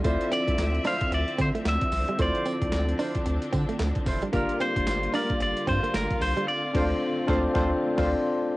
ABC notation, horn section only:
X:1
M:4/4
L:1/16
Q:"Swing 16ths" 1/4=112
K:Dm
V:1 name="Horn section"
[EFc]2 z4 [EFc] z8 z | [EFc]2 z4 [EFc] z6 z [EFc] z | [FGB]2 z4 [FGB] z8 z | z2 [DFc]2 z2 [DFc]2 [DFc]2 z [DFc]2 z3 |]